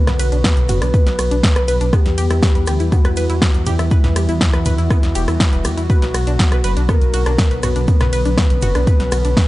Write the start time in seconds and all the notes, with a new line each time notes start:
Already playing: D3 F#3 B3 F#4 B4
0.07 B1 B4, cross-stick, snare, closed hi-hat, mid tom, shaker
0.19 B1 B4, closed hi-hat, ride, shaker
0.32 B1 D4, closed hi-hat, shaker
0.44 B3, kick, cross-stick, snare, closed hi-hat, mid tom, shaker
0.57 B1, closed hi-hat, shaker
0.69 F#1 F#4, closed hi-hat, mid tom, ride, shaker
0.82 B1 D4, cross-stick, closed hi-hat, shaker
0.94 B4, kick, closed hi-hat, shaker
1.06 B1 B4, snare, closed hi-hat, shaker
1.18 B1 F#4, cross-stick, closed hi-hat, ride, shaker
1.31 B1 D4, closed hi-hat, shaker
1.43 B3, kick, snare, closed hi-hat, shaker
1.55 B1 B4, cross-stick, closed hi-hat, shaker
1.68 B1 B4, closed hi-hat, ride, shaker
1.81 B1 D4, closed hi-hat, shaker
1.93 E3 G3 B3 E4 G4, kick, cross-stick, closed hi-hat, shaker
2.05 E2, snare, closed hi-hat, shaker
2.18 E2 G4, closed hi-hat, ride, shaker
2.30 E2 E4, cross-stick, closed hi-hat, shaker
2.42 B4, kick, snare, closed hi-hat, shaker
2.55 E2 B4, closed hi-hat, shaker
2.66 D2 G4, cross-stick, closed hi-hat, ride, shaker
2.80 E2 E4, closed hi-hat, shaker
2.92 B3 F#4, kick, closed hi-hat, mid tom, shaker
3.05 E2 B4, cross-stick, closed hi-hat, shaker
3.16 E2 B4, closed hi-hat, ride, shaker
3.29 E2 E4, closed hi-hat, shaker
3.42 B3, kick, cross-stick, snare, closed hi-hat, shaker
3.54 E2, closed hi-hat, shaker
3.66 E2 E4 G4, closed hi-hat, mid tom, ride, shaker
3.79 E2 E4, cross-stick, closed hi-hat, shaker
3.91 F#4 B4, kick, closed hi-hat, shaker
4.04 E2 B4, snare, closed hi-hat, mid tom, shaker
4.16 E2 G4, cross-stick, closed hi-hat, ride, shaker
4.28 E2 E4, closed hi-hat, shaker
4.41 B3, kick, snare, closed hi-hat, mid tom, shaker
4.54 E2 B4, cross-stick, closed hi-hat, shaker
4.65 D2 B4, closed hi-hat, mid tom, ride, shaker
4.78 E2 E4, closed hi-hat, shaker
4.91 B3, kick, cross-stick, closed hi-hat, shaker
5.03 E2, snare, closed hi-hat, shaker
5.15 E1 G4, closed hi-hat, ride, shaker
5.28 E2 E4, cross-stick, closed hi-hat, shaker
5.40 B4, kick, snare, closed hi-hat, shaker
5.53 E1 B4, closed hi-hat, shaker
5.65 E2 G4, cross-stick, closed hi-hat, ride, shaker
5.78 E2 E4, closed hi-hat, shaker
5.90 D3 F#3 F#4 B4, kick, closed hi-hat, shaker
6.02 B1 B4, snare, closed hi-hat, shaker
6.14 B1 F#4, cross-stick, closed hi-hat, ride, shaker
6.27 B1 D4, closed hi-hat, shaker
6.39 B3, kick, snare, closed hi-hat, shaker
6.52 B1 B4, cross-stick, closed hi-hat, shaker
6.64 F#1 B4, closed hi-hat, ride, shaker
6.77 B1 D4, closed hi-hat, shaker
6.89 B3 A#4, kick, cross-stick, closed hi-hat, mid tom, shaker
7.02 B1, closed hi-hat, shaker
7.14 B1 F#4, closed hi-hat, ride, shaker
7.26 B1 D4, cross-stick, closed hi-hat, shaker
7.38 B4, kick, snare, closed hi-hat, shaker
7.51 B1 B4, closed hi-hat, shaker
7.63 B1 F#4 B4, cross-stick, closed hi-hat, mid tom, ride, shaker
7.76 B1 D4, closed hi-hat, shaker
7.88 B3 C#4, kick, closed hi-hat, shaker
8.00 B1 B4, cross-stick, snare, closed hi-hat, mid tom, shaker
8.13 B1 B4, closed hi-hat, ride, shaker
8.25 B1 D4, closed hi-hat, shaker
8.38 B3, kick, cross-stick, snare, closed hi-hat, mid tom, shaker
8.50 B1, closed hi-hat, shaker
8.62 F#1 F#4, closed hi-hat, mid tom, ride, shaker
8.75 B1 D4, cross-stick, closed hi-hat, shaker
8.87 B4, kick, closed hi-hat, shaker
9.00 B1 B4, snare, closed hi-hat, shaker
9.12 B1 F#4, cross-stick, closed hi-hat, ride, shaker
9.25 B1 D4, closed hi-hat, shaker
9.37 B3, kick, snare, closed hi-hat, shaker